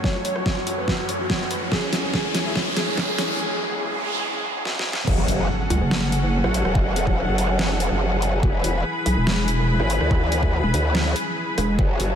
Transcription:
0.00 1.68 F#2 medium
0.00 1.68 F#3 medium
0.00 1.68 A3 medium
0.00 5.03 C#4 medium
0.00 1.68 C#5 medium
0.00 0.13 C#5 medium
0.00 kick loud
0.00 snare medium
0.00 riser medium
0.15 0.23 F#4 medium
0.25 0.34 C#5 medium
0.25 closed hi-hat medium
0.36 0.44 F#4 medium
0.36 cross-stick medium
0.46 0.55 C#5 medium
0.46 kick medium
0.46 snare medium
0.57 0.65 F#4 medium
0.67 0.76 F#4 medium
0.67 closed hi-hat medium
0.78 0.86 B4 medium
0.88 0.97 F#4 medium
0.88 kick medium
0.88 snare medium
0.99 1.07 F#4 medium
1.09 1.18 C#5 medium
1.09 closed hi-hat medium
1.20 1.28 F#4 medium
1.30 1.39 F#4 medium
1.30 kick medium
1.30 snare medium
1.41 1.49 F#4 medium
1.51 1.60 B4 medium
1.51 closed hi-hat medium
1.62 1.70 F#4 medium
1.72 5.04 E2 medium
1.72 5.04 E3 medium
1.72 5.04 G#3 medium
1.72 5.04 G#4 medium
1.72 1.81 G#4 loud
1.72 kick loud
1.72 snare medium
1.83 1.91 C#4 medium
1.93 2.02 C#4 medium
1.93 snare medium
1.93 closed hi-hat medium
2.04 2.12 C#4 medium
2.14 2.23 G#4 medium
2.14 kick loud
2.14 snare medium
2.25 2.33 C#4 medium
2.35 2.44 C#4 medium
2.35 snare medium
2.35 closed hi-hat medium
2.45 2.54 E4 loud
2.56 2.65 C#4 medium
2.56 kick medium
2.56 snare medium
2.67 2.75 C#4 medium
2.77 2.86 G#4 loud
2.77 snare medium
2.77 closed hi-hat medium
2.88 2.96 C#4 medium
2.98 3.07 C#4 medium
2.98 kick loud
2.98 snare medium
3.08 3.17 G#4 medium
3.18 3.28 C#4 medium
3.18 snare medium
3.18 closed hi-hat medium
3.29 3.38 C#4 medium
3.40 noise sweep medium
4.65 snare medium
4.79 snare medium
4.93 snare loud
5.07 5.27 F#1 medium
5.07 8.40 F#3 medium
5.07 8.40 C#4 medium
5.07 12.15 G#4 medium
5.07 8.40 A4 medium
5.07 8.40 F#5 medium
5.07 kick loud
5.07 crash loud
5.07 impact medium
5.28 5.48 F#1 loud
5.28 closed hi-hat medium
5.70 5.79 C#2 loud
5.70 closed hi-hat medium
5.81 6.42 F#1 loud
5.91 snare loud
6.12 closed hi-hat medium
6.44 6.63 A1 loud
6.44 cross-stick medium
6.54 closed hi-hat medium
6.65 7.26 E1 loud
6.65 cross-stick medium
6.75 kick loud
6.96 closed hi-hat medium
7.07 kick medium
7.28 7.71 F#1 loud
7.38 closed hi-hat medium
7.59 snare loud
7.71 7.89 F1 loud
7.80 closed hi-hat medium
7.91 8.41 F#1 medium
8.22 closed hi-hat medium
8.43 8.62 E1 loud
8.43 11.75 E3 medium
8.43 11.75 E4 medium
8.43 11.75 B4 medium
8.43 11.75 B5 medium
8.43 kick loud
8.64 8.83 E1 loud
8.64 closed hi-hat medium
9.06 9.15 B1 loud
9.06 closed hi-hat medium
9.17 9.78 E1 loud
9.27 snare loud
9.48 closed hi-hat medium
9.80 9.99 G#1 medium
9.80 cross-stick medium
9.90 closed hi-hat medium
10.01 10.62 D2 loud
10.01 cross-stick medium
10.11 kick loud
10.32 closed hi-hat medium
10.43 kick medium
10.64 10.72 E1 loud
10.74 11.14 D2 medium
10.74 closed hi-hat medium
10.95 snare loud
11.16 closed hi-hat medium
11.58 11.77 E1 loud
11.58 cross-stick medium
11.58 closed hi-hat medium
11.79 11.98 F#1 loud
11.79 12.15 F#3 medium
11.79 12.15 F#4 medium
11.79 12.15 A4 medium
11.79 12.15 C#5 medium
11.79 kick loud
12.00 12.15 F#1 loud
12.00 closed hi-hat medium

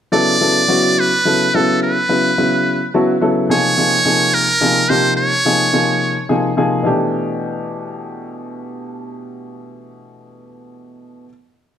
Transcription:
0.12 0.35 C#3 medium
0.12 0.35 F#3 medium
0.12 0.35 B3 medium
0.12 0.35 E4 medium
0.12 0.35 A4 medium
0.12 1.01 D5 loud
0.41 0.61 C#3 medium
0.41 0.61 F#3 medium
0.41 0.62 B3 medium
0.41 0.61 E4 medium
0.41 0.61 A4 medium
0.68 1.10 C#3 medium
0.68 1.10 F#3 medium
0.68 1.10 B3 medium
0.68 1.10 E4 medium
0.68 1.10 F#4 medium
1.00 1.57 B4 medium
1.25 1.46 C#3 medium
1.25 1.46 F#3 medium
1.25 1.46 B3 medium
1.25 1.46 E4 medium
1.25 1.46 A4 medium
1.54 1.95 C#3 medium
1.54 1.95 F#3 medium
1.54 1.95 B3 medium
1.54 1.95 E4 medium
1.54 1.95 A4 medium
1.54 1.82 A4 medium
1.83 2.90 B4 medium
2.09 2.30 C#3 medium
2.09 2.30 F#3 medium
2.09 2.30 B3 medium
2.09 2.30 E4 medium
2.09 2.30 B4 medium
2.38 2.79 C#3 medium
2.38 2.79 F#3 medium
2.38 2.79 B3 medium
2.38 2.79 E4 medium
2.38 2.79 B4 medium
2.94 3.15 C#3 medium
2.94 3.15 F#3 medium
2.94 3.15 B3 medium
2.94 3.15 E4 medium
2.94 3.15 F#4 medium
2.94 3.46 A5 medium
3.21 3.50 C#3 medium
3.21 3.50 F#3 medium
3.21 3.50 B3 medium
3.21 3.50 E4 medium
3.21 3.50 A4 medium
3.49 3.72 C3 medium
3.49 3.72 F3 medium
3.49 3.72 A#3 medium
3.49 3.72 D#4 medium
3.49 3.72 G#4 medium
3.49 4.36 C#5 loud
3.77 3.98 C3 medium
3.77 3.98 F3 medium
3.77 3.98 A#3 medium
3.77 3.98 D#4 medium
3.77 3.98 G#4 medium
4.05 4.47 C3 medium
4.05 4.47 F3 medium
4.05 4.47 A#3 medium
4.05 4.47 D#4 medium
4.05 4.47 G#4 medium
4.34 4.91 A#4 loud
4.61 4.82 C3 medium
4.61 4.82 F3 medium
4.61 4.82 A#3 medium
4.61 4.82 D#4 medium
4.61 4.82 G#4 medium
4.89 5.31 C3 medium
4.89 5.31 F3 medium
4.89 5.31 A#3 medium
4.89 5.31 D#4 medium
4.89 5.31 G4 medium
4.89 5.16 C5 loud
5.17 6.25 C#5 medium
5.45 5.66 C3 medium
5.45 5.66 F3 medium
5.45 5.66 A#3 medium
5.45 5.67 D#4 medium
5.45 5.67 G#4 medium
5.73 6.15 C3 medium
5.73 6.15 F3 medium
5.73 6.15 A#3 medium
5.73 6.15 D#4 medium
5.73 6.15 G#4 medium
6.29 6.50 C3 medium
6.29 6.50 F3 medium
6.29 6.50 A#3 medium
6.29 6.50 D#4 medium
6.29 6.50 G#4 medium
6.57 6.85 C3 medium
6.57 6.86 F3 medium
6.57 6.86 A#3 medium
6.57 6.86 D#4 medium
6.57 6.86 G#4 medium
6.83 11.24 B2 medium
6.83 11.25 E3 medium
6.83 11.26 A3 medium
6.83 11.27 D4 medium
6.83 11.28 G4 medium

